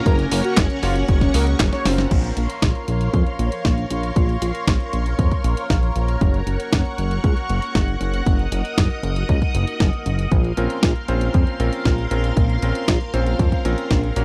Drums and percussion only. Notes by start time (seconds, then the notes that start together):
0.06 kick, closed hi-hat
0.19 closed hi-hat
0.32 open hi-hat
0.44 closed hi-hat
0.57 kick, snare, clap, closed hi-hat
0.70 closed hi-hat
0.83 open hi-hat
0.96 closed hi-hat
1.08 kick, closed hi-hat
1.21 kick, snare, closed hi-hat
1.34 open hi-hat
1.60 kick, snare, clap, closed hi-hat
1.73 snare, closed hi-hat
1.85 snare, open hi-hat
1.98 snare, closed hi-hat
2.11 kick, closed hi-hat, crash
2.24 closed hi-hat
2.37 closed hi-hat
2.50 closed hi-hat
2.62 kick, snare, closed hi-hat
2.75 closed hi-hat
2.88 closed hi-hat
3.01 closed hi-hat
3.14 kick, closed hi-hat
3.27 closed hi-hat
3.39 closed hi-hat
3.52 closed hi-hat
3.65 kick, snare, closed hi-hat
3.78 closed hi-hat
3.90 closed hi-hat
4.03 closed hi-hat
4.16 kick, closed hi-hat
4.29 closed hi-hat
4.42 closed hi-hat
4.55 closed hi-hat
4.67 kick, snare, closed hi-hat
4.80 closed hi-hat
4.93 closed hi-hat
5.06 closed hi-hat
5.19 kick, closed hi-hat
5.32 kick, closed hi-hat
5.44 closed hi-hat
5.57 closed hi-hat
5.70 kick, snare, closed hi-hat
5.83 closed hi-hat
5.96 closed hi-hat
6.08 closed hi-hat
6.21 kick, closed hi-hat
6.34 closed hi-hat
6.47 closed hi-hat
6.60 closed hi-hat
6.73 kick, snare, closed hi-hat
6.85 closed hi-hat
6.98 closed hi-hat
7.11 closed hi-hat
7.24 kick, closed hi-hat
7.37 closed hi-hat
7.50 closed hi-hat
7.62 closed hi-hat
7.75 kick, snare, closed hi-hat
7.88 closed hi-hat
8.01 closed hi-hat
8.14 closed hi-hat
8.26 kick, closed hi-hat
8.39 closed hi-hat
8.52 closed hi-hat
8.65 closed hi-hat
8.78 kick, snare, closed hi-hat
8.91 closed hi-hat
9.03 closed hi-hat
9.16 closed hi-hat
9.29 kick, closed hi-hat
9.42 kick, closed hi-hat
9.55 closed hi-hat
9.67 closed hi-hat
9.80 kick, snare, closed hi-hat
9.93 closed hi-hat
10.06 closed hi-hat
10.19 closed hi-hat
10.32 kick, closed hi-hat
10.44 closed hi-hat
10.57 closed hi-hat
10.70 closed hi-hat
10.83 kick, snare, closed hi-hat
10.96 closed hi-hat
11.08 closed hi-hat
11.21 closed hi-hat
11.34 kick, closed hi-hat
11.47 closed hi-hat
11.60 closed hi-hat
11.73 closed hi-hat
11.85 kick, snare, closed hi-hat
11.98 closed hi-hat
12.11 closed hi-hat
12.24 closed hi-hat
12.37 kick, closed hi-hat
12.50 closed hi-hat
12.62 closed hi-hat
12.75 closed hi-hat
12.88 kick, snare, closed hi-hat
13.01 closed hi-hat
13.14 closed hi-hat
13.27 closed hi-hat
13.39 kick, closed hi-hat
13.52 kick, closed hi-hat
13.65 closed hi-hat
13.78 closed hi-hat
13.91 kick, snare, closed hi-hat
14.04 closed hi-hat
14.16 closed hi-hat